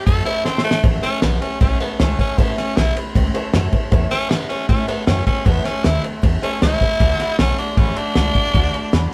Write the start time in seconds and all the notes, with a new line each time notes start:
0.06 F#2 A2 E3 A3 C#4 E4 A4 C#5 E5 A5, kick, ride
0.25 A3 C#4 E4 C#5 E5 A5, muted upright bass stroke, ride
0.44 E2 E3 A3 C4 C#4 E4 C#5 E5 A5, snare
0.58 snare
0.64 A3 C#4 E4 C#5 A5, muted upright bass stroke
0.71 snare
0.83 A1 A2 E3 A3 C#4 E4 C#5 E5 A5, kick, ride
1.02 A3 C#4 E4 C#5 E5 A5, muted upright bass stroke, snare, ride
1.22 A#1 E3 A3 B3 C#4 E4 C#5 E5 A5, snare, ride
1.41 A3 C#4 E4 C#5 E5 A5, ride
1.60 B1 A2 E3 A3 C#4 E4 C#5 E5 A5, kick, ride
1.80 A3 B3 C#4 E4 C#5 E5 A5, ride
1.99 C#2 E3 A3 C#4 E4 C#5 E5 A5, snare, ride
2.18 A3 C#4 E4 C#5 E5 A5, kick, ride
2.38 A1 A2 E3 A3 B3 C#4 E4 C#5 E5 A5, kick, ride
2.56 A3 C#4 E4 C#5 E5 A5, muted upright bass stroke, snare, ride
2.76 B1 E3 A3 E4 C#5 E5 A5, snare, ride
2.96 A3 C#4 E4 C#5 E5 B5, ride
3.15 C#2 A2 E3 A3 C#4 E4 C#5 E5 G5, kick, ride
3.34 A3 C#4 E4 C#5 E5 A5, ride
3.53 F#2 E3 A3 C#4 E4 C#5 E5 A5, snare, ride
3.72 A3 C#4 E4 C#5 E5 A5, kick, ride
3.92 E2 A2 E3 A3 C#4 E4 C#5 E5 A5, kick, ride
4.11 A3 C#4 E4 C#5 E5 A5, muted upright bass stroke, snare, ride
4.30 G2 E3 A3 B3 C#4 E4 C#5 E5 A5, snare, ride
4.49 A3 C#4 E4 C#5 E5 A5, muted upright bass stroke, ride
4.69 A2 E3 A3 C#4 E4 C#5 E5 A5, kick, ride
4.88 A3 B3 C#4 E4 C#5 E5 A5, muted upright bass stroke, ride
5.06 F#2 E3 A3 C#4 C#5 E5 G5, snare, ride
5.10 E4
5.26 A3 C#4 E4 C#5 E5 A5, kick, ride
5.45 E2 A2 E3 A3 B3 C#4 E4 C#5 E5 A5, kick, ride
5.64 A3 C#4 E4 C#5 E5 A5, muted upright bass stroke, snare, ride
5.83 D#2 E3 A3 C#4 E4 C#5 E5 A5, snare, ride
6.03 A3 C#4 E4 C#5 E5 A5, muted upright bass stroke, ride
6.22 E2 A2 E3 A3 C#4 E4 C#5 E5 A5, kick, ride
6.41 A3 C#4 E4 C#5 E5 A5, muted upright bass stroke, ride
6.60 C#2 E3 A3 C#4 E4 C#5 E5 A5, snare, ride
6.80 A3 C#4 E4 C#5 E5 A5, kick, ride
7.00 D2 D3 A3 D4 F#4 D5 F#5 A5, kick, ride
7.18 A3 D4 F#4 D5 F#5 B5, muted upright bass stroke, snare, ride
7.38 B1 D3 A3 C#4 F#4 F#5 A5, snare, ride
7.58 A3 D4 F#4 D5 F#5 A5, ride
7.77 A1 D3 A3 C#4 D4 F#4 D5 F#5 B5, kick, ride
7.96 A3 D4 F#4 D5 F#5 A5, muted upright bass stroke, ride
8.15 C#2 D3 A3 D4 F#4 D5 F#5 A5, snare, ride
8.34 A3 D4 F#4 D5 F#5, kick, ride
8.53 D2 D3 A3 D4 F#4 D5 F#5 A5, kick, ride
8.73 A3 D4 F#4 D5 F#5 A5, muted upright bass stroke, ride
8.92 E2 D3 A3 D4 F#4 D5 F#5 B5, snare, ride